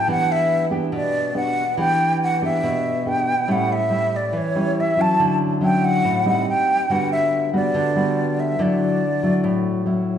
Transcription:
0.08 0.90 E3 medium
0.08 0.68 B3 medium
0.08 0.68 D4 medium
0.08 0.68 G4 medium
0.08 0.33 F#5 medium
0.32 0.67 E5 medium
0.71 1.31 B3 medium
0.71 1.31 D4 medium
0.71 1.31 G4 medium
0.92 1.75 B2 medium
0.92 1.34 D5 medium
1.34 1.62 B3 medium
1.34 1.62 D4 medium
1.34 1.62 G4 medium
1.34 1.75 F#5 loud
1.77 2.60 E3 medium
1.77 2.38 B3 medium
1.77 2.38 D4 medium
1.77 2.38 G4 medium
1.77 2.18 G5 loud
2.23 2.41 F#5 medium
2.42 3.02 B3 medium
2.42 3.02 D4 medium
2.42 3.02 G4 medium
2.42 3.10 E5 medium
2.63 3.46 B2 medium
3.06 3.33 B3 medium
3.06 3.33 D4 medium
3.06 3.33 G4 medium
3.06 3.53 G5 loud
3.48 4.31 A2 medium
3.48 3.75 G3 medium
3.48 3.75 C#4 medium
3.48 3.75 E4 medium
3.48 3.74 F#5 medium
3.72 4.18 E5 medium
3.90 4.32 G3 medium
3.90 4.33 C#4 medium
3.90 4.33 E4 medium
4.16 4.39 D5 medium
4.33 5.16 E3 medium
4.37 4.82 C#5 medium
4.55 4.94 G3 medium
4.55 4.94 C#4 medium
4.55 4.94 E4 medium
4.80 5.03 E5 medium
4.97 5.57 F#3 medium
4.97 5.58 C#4 medium
4.97 5.58 E4 medium
5.01 5.36 A5 loud
5.20 6.02 D3 medium
5.61 6.21 F#3 medium
5.61 6.21 C#4 medium
5.61 6.22 E4 medium
5.61 5.86 G5 medium
5.85 6.26 F#5 medium
6.04 6.44 A2 medium
6.25 6.85 G3 medium
6.25 6.86 C4 medium
6.25 6.86 D#4 medium
6.25 6.46 F#5 medium
6.49 6.93 G5 medium
6.90 7.72 D3 medium
6.90 7.49 G3 medium
6.90 7.50 B3 medium
6.90 7.50 F#4 medium
6.90 7.11 F#5 medium
7.12 7.51 E5 medium
7.53 7.92 G3 medium
7.53 7.92 B3 medium
7.53 7.92 F#4 medium
7.53 8.41 D5 medium
7.74 8.57 D3 medium
7.96 8.56 G3 medium
7.96 8.56 B3 medium
7.96 8.56 F#4 medium
8.40 8.63 E5 medium
8.59 9.42 D3 medium
8.59 9.01 F#3 medium
8.59 9.02 E4 medium
8.59 9.88 D5 medium
9.23 9.83 F#3 medium
9.23 9.84 E4 medium
9.44 10.18 A2 medium
9.86 10.18 F#3 soft
9.86 10.18 C#4 medium
9.86 10.18 E4 medium

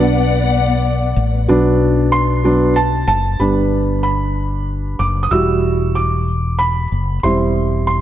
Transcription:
0.00 1.12 B1 loud
0.00 1.47 B3 medium
0.00 1.44 B4 medium
0.00 1.12 D5 medium
0.00 1.46 D5 medium
0.00 1.46 F#5 medium
1.16 1.46 A1 medium
1.48 3.04 B1 medium
1.48 2.43 F#3 soft
1.48 2.43 B3 soft
1.48 2.44 D4 soft
2.12 2.78 C6 medium
2.44 2.73 F#3 soft
2.44 2.73 B3 soft
2.44 2.73 D4 soft
2.76 3.06 A5 medium
3.08 3.38 F#1 medium
3.08 3.41 A5 medium
3.39 4.96 G1 medium
3.39 5.28 G3 soft
3.39 5.28 B3 soft
3.39 5.28 D4 soft
3.39 4.00 B5 soft
4.03 5.02 B5 medium
4.99 5.30 F#1 medium
4.99 5.05 D6 medium
5.23 5.31 D#6 soft
5.31 6.87 E1 medium
5.31 6.24 G3 soft
5.31 6.24 E4 soft
5.31 6.24 F#4 soft
5.31 5.97 E6 medium
5.95 6.62 D6 medium
6.59 7.25 B5 medium
6.92 7.22 F#1 medium
7.23 8.01 E1 medium
7.23 8.01 G3 soft
7.23 8.01 C4 soft
7.23 8.01 E4 soft
7.23 7.86 C6 medium
7.87 8.01 C6 medium

